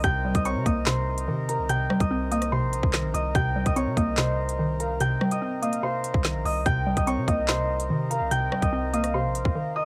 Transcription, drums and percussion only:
0.04 kick loud
0.04 closed hi-hat medium
0.35 kick medium
0.35 closed hi-hat medium
0.45 closed hi-hat medium
0.66 kick loud
0.66 closed hi-hat medium
0.86 snare loud
0.86 clap loud
1.18 closed hi-hat medium
1.49 closed hi-hat medium
1.69 closed hi-hat medium
1.90 cross-stick loud
2.00 kick medium
2.00 closed hi-hat medium
2.32 closed hi-hat medium
2.42 cross-stick medium
2.42 closed hi-hat medium
2.73 closed hi-hat medium
2.83 kick loud
2.93 snare loud
2.93 clap loud
2.93 closed hi-hat medium
3.15 closed hi-hat medium
3.35 kick loud
3.35 closed hi-hat medium
3.66 kick medium
3.66 closed hi-hat medium
3.76 closed hi-hat medium
3.97 kick loud
3.97 closed hi-hat medium
4.17 snare loud
4.17 clap loud
4.49 closed hi-hat medium
4.80 closed hi-hat medium
5.00 closed hi-hat medium
5.21 cross-stick loud
5.31 closed hi-hat medium
5.63 closed hi-hat medium
5.73 closed hi-hat medium
6.04 closed hi-hat medium
6.14 kick loud
6.24 snare loud
6.24 clap medium
6.24 closed hi-hat medium
6.46 open hi-hat medium
6.66 kick loud
6.66 closed hi-hat medium
6.97 kick medium
6.97 closed hi-hat medium
7.07 closed hi-hat medium
7.28 kick loud
7.28 closed hi-hat medium
7.48 snare loud
7.48 clap loud
7.80 closed hi-hat medium
8.11 closed hi-hat medium
8.31 closed hi-hat medium
8.52 cross-stick loud
8.62 kick medium
8.62 closed hi-hat medium
8.94 closed hi-hat medium
9.04 cross-stick medium
9.04 closed hi-hat medium
9.35 closed hi-hat medium
9.45 kick loud

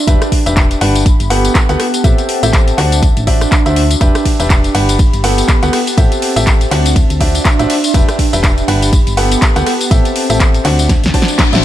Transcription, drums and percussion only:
0.07 kick loud
0.07 closed hi-hat medium
0.07 tambourine medium
0.22 cross-stick medium
0.22 closed hi-hat soft
0.22 tambourine soft
0.32 kick medium
0.32 open hi-hat loud
0.46 closed hi-hat soft
0.46 tambourine medium
0.57 kick loud
0.57 clap loud
0.57 closed hi-hat medium
0.57 tambourine medium
0.71 closed hi-hat soft
0.71 tambourine soft
0.81 open hi-hat loud
0.95 closed hi-hat soft
0.95 tambourine medium
1.06 kick loud
1.06 closed hi-hat medium
1.06 tambourine medium
1.20 closed hi-hat soft
1.20 tambourine soft
1.30 open hi-hat loud
1.45 closed hi-hat soft
1.45 tambourine medium
1.55 kick loud
1.55 clap loud
1.55 closed hi-hat medium
1.55 tambourine medium
1.69 closed hi-hat soft
1.69 tambourine soft
1.80 cross-stick medium
1.80 open hi-hat loud
1.94 closed hi-hat soft
1.94 tambourine medium
2.04 kick loud
2.04 closed hi-hat medium
2.04 tambourine medium
2.18 closed hi-hat soft
2.18 tambourine soft
2.29 open hi-hat loud
2.43 closed hi-hat soft
2.43 tambourine medium
2.53 kick loud
2.53 clap loud
2.53 closed hi-hat medium
2.53 tambourine medium
2.68 closed hi-hat soft
2.68 tambourine soft
2.78 clap soft
2.78 open hi-hat loud
2.92 closed hi-hat soft
2.92 tambourine medium
3.03 kick loud
3.03 closed hi-hat medium
3.03 tambourine medium
3.17 closed hi-hat soft
3.17 tambourine soft
3.27 kick medium
3.27 open hi-hat loud
3.41 cross-stick medium
3.41 closed hi-hat soft
3.41 tambourine medium
3.52 kick loud
3.52 clap loud
3.52 closed hi-hat medium
3.52 tambourine medium
3.66 closed hi-hat soft
3.66 tambourine soft
3.76 open hi-hat loud
3.91 closed hi-hat soft
3.91 tambourine medium
4.01 kick loud
4.01 closed hi-hat medium
4.01 tambourine medium
4.15 cross-stick medium
4.15 closed hi-hat soft
4.15 tambourine soft
4.25 kick medium
4.25 open hi-hat loud
4.25 ride medium
4.40 closed hi-hat soft
4.40 tambourine medium
4.50 kick loud
4.50 clap loud
4.50 closed hi-hat medium
4.50 tambourine medium
4.64 closed hi-hat soft
4.64 tambourine soft
4.75 open hi-hat medium
4.75 ride medium
4.89 closed hi-hat soft
4.89 tambourine medium
4.99 kick loud
4.99 closed hi-hat medium
4.99 tambourine medium
5.13 closed hi-hat soft
5.13 tambourine soft
5.24 open hi-hat loud
5.24 ride medium
5.38 closed hi-hat soft
5.38 tambourine medium
5.48 kick loud
5.48 clap loud
5.48 closed hi-hat medium
5.48 tambourine medium
5.63 closed hi-hat soft
5.63 tambourine soft
5.73 cross-stick medium
5.73 open hi-hat loud
5.73 ride medium
5.87 closed hi-hat soft
5.87 tambourine medium
5.98 kick loud
5.98 closed hi-hat medium
5.98 tambourine medium
6.12 closed hi-hat soft
6.12 tambourine soft
6.22 open hi-hat loud
6.22 ride medium
6.36 closed hi-hat soft
6.36 tambourine medium
6.47 kick loud
6.47 clap loud
6.47 closed hi-hat medium
6.47 tambourine medium
6.61 closed hi-hat soft
6.61 tambourine soft
6.71 clap soft
6.71 open hi-hat medium
6.71 ride medium
6.86 closed hi-hat soft
6.86 tambourine medium
6.96 kick loud
6.96 closed hi-hat medium
6.96 tambourine medium
7.10 closed hi-hat soft
7.10 tambourine soft
7.21 kick medium
7.21 open hi-hat loud
7.21 ride medium
7.35 closed hi-hat soft
7.35 tambourine medium
7.45 kick loud
7.45 clap loud
7.45 closed hi-hat medium
7.45 tambourine medium
7.59 closed hi-hat soft
7.59 tambourine soft
7.70 open hi-hat medium
7.70 ride medium
7.84 closed hi-hat soft
7.84 tambourine medium
7.94 kick loud
7.94 closed hi-hat medium
7.94 tambourine medium
8.09 cross-stick medium
8.09 closed hi-hat soft
8.09 tambourine soft
8.19 kick medium
8.19 open hi-hat loud
8.19 ride medium
8.33 closed hi-hat soft
8.33 tambourine medium
8.44 kick loud
8.44 clap loud
8.44 closed hi-hat medium
8.44 tambourine medium
8.58 closed hi-hat soft
8.58 tambourine soft
8.68 open hi-hat medium
8.68 ride medium
8.82 closed hi-hat soft
8.82 tambourine medium
8.93 kick loud
8.93 closed hi-hat medium
8.93 tambourine medium
9.07 closed hi-hat soft
9.07 tambourine soft
9.17 open hi-hat loud
9.17 ride medium
9.32 closed hi-hat soft
9.32 tambourine medium
9.42 kick loud
9.42 clap loud
9.42 closed hi-hat medium
9.42 tambourine medium
9.56 closed hi-hat soft
9.56 tambourine soft
9.66 cross-stick medium
9.66 open hi-hat medium
9.66 ride medium
9.81 closed hi-hat soft
9.81 tambourine medium
9.91 kick loud
9.91 closed hi-hat medium
9.91 tambourine medium
10.05 closed hi-hat soft
10.05 tambourine soft
10.16 open hi-hat loud
10.16 ride medium
10.30 closed hi-hat soft
10.30 tambourine medium
10.40 kick loud
10.40 clap loud
10.40 closed hi-hat medium
10.40 tambourine medium
10.54 closed hi-hat soft
10.54 tambourine soft
10.65 clap soft
10.65 open hi-hat medium
10.65 ride medium
10.79 closed hi-hat soft
10.79 tambourine medium
10.89 kick loud
10.89 snare medium
10.89 closed hi-hat medium
10.89 tambourine medium
11.04 snare medium
11.04 closed hi-hat soft
11.04 tambourine soft
11.14 kick medium
11.14 open hi-hat loud
11.14 ride medium
11.22 snare medium
11.28 closed hi-hat soft
11.28 tambourine medium
11.39 kick loud
11.39 snare medium
11.39 clap loud
11.39 closed hi-hat medium
11.39 tambourine medium
11.53 snare loud
11.53 closed hi-hat soft
11.53 tambourine soft

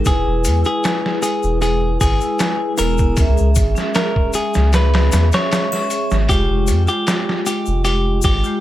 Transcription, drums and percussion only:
0.05 kick loud
0.05 open hi-hat medium
0.05 shaker medium
0.45 open hi-hat medium
0.45 shaker medium
0.65 closed hi-hat soft
0.65 shaker soft
0.84 snare loud
0.84 open hi-hat medium
0.84 shaker soft
1.06 snare soft
1.22 open hi-hat medium
1.22 shaker medium
1.43 shaker soft
1.62 open hi-hat medium
1.62 shaker soft
2.01 kick medium
2.01 open hi-hat medium
2.01 shaker medium
2.21 shaker soft
2.39 snare loud
2.39 open hi-hat medium
2.39 shaker soft
2.77 open hi-hat medium
2.77 triangle medium
2.77 shaker medium
2.98 kick medium
2.98 shaker soft
3.17 kick loud
3.17 open hi-hat medium
3.17 shaker medium
3.38 shaker soft
3.55 kick medium
3.55 open hi-hat medium
3.55 shaker loud
3.76 snare soft
3.76 shaker soft
3.95 snare loud
3.95 open hi-hat medium
3.95 shaker soft
4.16 kick medium
4.33 open hi-hat medium
4.33 shaker medium
4.54 snare medium
4.54 shaker soft
4.73 snare loud
4.73 open hi-hat medium
4.73 shaker soft
4.94 snare loud
4.94 open hi-hat medium
5.12 snare medium
5.12 open hi-hat medium
5.12 shaker medium
5.32 snare loud
5.32 open hi-hat medium
5.32 shaker soft
5.52 snare loud
5.52 open hi-hat medium
5.52 shaker medium
5.72 snare soft
5.72 triangle medium
5.90 open hi-hat medium
5.90 shaker medium
6.11 snare medium
6.11 shaker soft
6.29 kick loud
6.29 open hi-hat medium
6.29 shaker soft
6.67 open hi-hat medium
6.67 shaker medium
6.88 closed hi-hat soft
6.88 shaker soft
7.07 snare loud
7.07 open hi-hat medium
7.07 shaker soft
7.29 snare medium
7.46 open hi-hat medium
7.46 shaker medium
7.66 shaker soft
7.85 open hi-hat medium
7.85 shaker medium
8.22 kick medium
8.22 open hi-hat medium
8.22 shaker medium
8.44 shaker soft

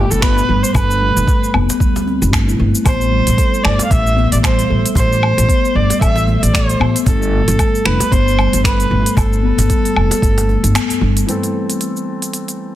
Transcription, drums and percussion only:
0.11 cabasa medium
0.22 finger snap medium
0.22 kick loud
0.22 cabasa medium
0.38 cabasa soft
0.64 cabasa medium
0.74 cajon bass medium
0.74 kick loud
0.74 cabasa medium
0.74 low woodblock medium
0.91 cabasa soft
1.17 cabasa medium
1.27 kick loud
1.27 cabasa medium
1.44 cabasa soft
1.54 low woodblock medium
1.70 cajon slap medium
1.70 cabasa medium
1.80 kick loud
1.80 cabasa medium
1.96 cajon slap medium
1.96 cabasa soft
2.07 cajon slap soft
2.22 cabasa medium
2.33 finger snap medium
2.33 kick loud
2.33 cabasa medium
2.33 low woodblock medium
2.49 cabasa soft
2.75 cabasa medium
2.85 kick loud
2.85 cajon bass medium
2.85 open hi-hat medium
2.85 cabasa medium
2.85 low woodblock medium
3.01 cabasa soft
3.27 open hi-hat soft
3.27 cabasa medium
3.38 kick loud
3.38 open hi-hat soft
3.38 cabasa soft
3.54 cabasa soft
3.65 finger snap medium
3.65 low woodblock medium
3.79 cajon slap medium
3.79 open hi-hat soft
3.79 cabasa medium
3.91 kick loud
3.91 open hi-hat medium
3.91 cabasa medium
4.07 cabasa soft
4.18 cajon slap soft
4.32 open hi-hat soft
4.32 cabasa medium
4.43 finger snap medium
4.43 kick loud
4.43 open hi-hat medium
4.43 cabasa medium
4.43 low woodblock medium
4.59 open hi-hat soft
4.59 cabasa soft
4.86 open hi-hat soft
4.86 cabasa medium
4.95 cajon bass medium
4.95 kick loud
4.95 open hi-hat medium
4.95 cabasa medium
5.13 cabasa soft
5.23 low woodblock medium
5.38 open hi-hat soft
5.38 cabasa medium
5.49 kick loud
5.49 open hi-hat medium
5.49 cabasa medium
5.65 cabasa soft
5.90 cajon slap medium
5.90 open hi-hat soft
5.90 cabasa medium
6.01 kick loud
6.01 open hi-hat medium
6.01 cabasa medium
6.01 low woodblock medium
6.16 cajon slap medium
6.16 cabasa soft
6.27 cajon slap soft
6.43 open hi-hat soft
6.43 cabasa medium
6.54 finger snap medium
6.54 kick loud
6.54 open hi-hat medium
6.54 cabasa medium
6.69 open hi-hat soft
6.69 cabasa soft
6.81 low woodblock medium
6.96 open hi-hat soft
6.96 cabasa medium
7.06 cajon bass medium
7.06 kick loud
7.06 open hi-hat medium
7.06 cabasa medium
7.22 cabasa soft
7.48 open hi-hat soft
7.48 cabasa medium
7.59 kick loud
7.59 open hi-hat medium
7.59 cabasa medium
7.59 low woodblock medium
7.75 cabasa soft
7.85 finger snap medium
8.00 cajon slap medium
8.00 open hi-hat soft
8.00 cabasa medium
8.12 kick loud
8.12 open hi-hat medium
8.12 cabasa medium
8.28 cabasa soft
8.38 cajon slap soft
8.38 low woodblock medium
8.53 open hi-hat soft
8.53 cabasa medium
8.64 finger snap medium
8.64 kick loud
8.64 open hi-hat medium
8.64 cabasa medium
8.80 open hi-hat soft
8.80 cabasa soft
9.06 open hi-hat soft
9.06 cabasa medium
9.17 cajon bass medium
9.17 kick loud
9.17 open hi-hat medium
9.17 cabasa medium
9.17 low woodblock medium
9.33 cabasa soft
9.58 cajon bass medium
9.58 open hi-hat soft
9.58 cabasa medium
9.70 kick loud
9.70 open hi-hat medium
9.70 cabasa medium
9.85 open hi-hat soft
9.85 cabasa soft
9.96 low woodblock medium
10.11 cajon slap medium
10.11 open hi-hat soft
10.11 cabasa medium
10.22 kick loud
10.22 open hi-hat medium
10.22 cabasa medium
10.38 cajon slap medium
10.38 open hi-hat soft
10.38 cabasa soft
10.49 cajon slap soft
10.64 open hi-hat soft
10.64 cabasa medium
10.75 finger snap medium
10.75 open hi-hat medium
10.75 cabasa medium
10.75 low woodblock medium
10.90 cajon slap soft
10.90 open hi-hat soft
10.90 cabasa soft
11.17 open hi-hat soft
11.17 cabasa medium
11.29 open hi-hat medium
11.29 cabasa soft
11.43 open hi-hat soft
11.43 cabasa soft
11.70 open hi-hat soft
11.70 cabasa medium
11.81 open hi-hat soft
11.81 cabasa soft
11.96 cabasa soft
12.22 open hi-hat soft
12.22 cabasa medium
12.33 open hi-hat soft
12.33 cabasa soft
12.48 open hi-hat soft
12.48 cabasa soft

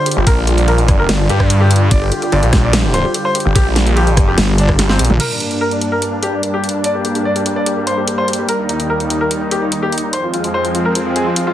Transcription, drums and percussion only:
0.06 open hi-hat medium
0.11 closed hi-hat medium
0.27 kick loud
0.27 closed hi-hat medium
0.27 ride medium
0.47 closed hi-hat soft
0.58 closed hi-hat soft
0.68 ride soft
0.78 closed hi-hat soft
0.88 kick loud
0.88 cross-stick medium
0.88 closed hi-hat soft
1.09 snare loud
1.09 closed hi-hat medium
1.09 ride medium
1.30 closed hi-hat medium
1.40 kick medium
1.40 cross-stick medium
1.50 closed hi-hat medium
1.50 ride medium
1.71 open hi-hat medium
1.76 closed hi-hat medium
1.91 kick loud
1.91 closed hi-hat medium
1.91 ride medium
2.12 closed hi-hat medium
2.22 closed hi-hat soft
2.32 ride soft
2.43 closed hi-hat soft
2.53 kick loud
2.53 cross-stick medium
2.53 snare medium
2.53 closed hi-hat medium
2.73 snare loud
2.73 closed hi-hat medium
2.73 ride medium
2.94 closed hi-hat medium
3.14 closed hi-hat medium
3.14 ride medium
3.35 open hi-hat loud
3.40 closed hi-hat medium
3.56 kick loud
3.56 closed hi-hat medium
3.56 ride medium
3.76 snare medium
3.76 closed hi-hat medium
3.87 closed hi-hat soft
3.97 ride soft
4.07 closed hi-hat soft
4.17 kick loud
4.17 cross-stick medium
4.17 closed hi-hat medium
4.38 snare loud
4.38 closed hi-hat medium
4.38 ride medium
4.58 closed hi-hat medium
4.69 kick medium
4.69 cross-stick medium
4.79 snare medium
4.79 closed hi-hat medium
4.79 ride soft
4.89 snare medium
4.99 open hi-hat loud
5.05 closed hi-hat medium
5.10 mid tom medium
5.20 closed hi-hat medium
5.20 crash medium
5.40 closed hi-hat medium
5.51 closed hi-hat soft
5.71 closed hi-hat soft
5.81 closed hi-hat soft
6.02 closed hi-hat medium
6.23 closed hi-hat medium
6.43 closed hi-hat medium
6.64 closed hi-hat soft
6.69 closed hi-hat medium
6.84 closed hi-hat medium
7.05 closed hi-hat medium
7.15 closed hi-hat soft
7.36 closed hi-hat soft
7.46 closed hi-hat medium
7.66 closed hi-hat medium
7.87 closed hi-hat medium
8.08 closed hi-hat medium
8.28 closed hi-hat soft
8.33 closed hi-hat medium
8.49 closed hi-hat medium
8.69 closed hi-hat medium
8.80 closed hi-hat soft
9.00 closed hi-hat soft
9.10 closed hi-hat medium
9.31 closed hi-hat medium
9.51 closed hi-hat soft
9.72 closed hi-hat medium
9.92 closed hi-hat soft
9.98 closed hi-hat medium
10.13 closed hi-hat medium
10.34 closed hi-hat soft
10.44 closed hi-hat soft
10.65 closed hi-hat soft
10.75 closed hi-hat soft
10.95 closed hi-hat medium
11.16 closed hi-hat soft
11.36 closed hi-hat medium

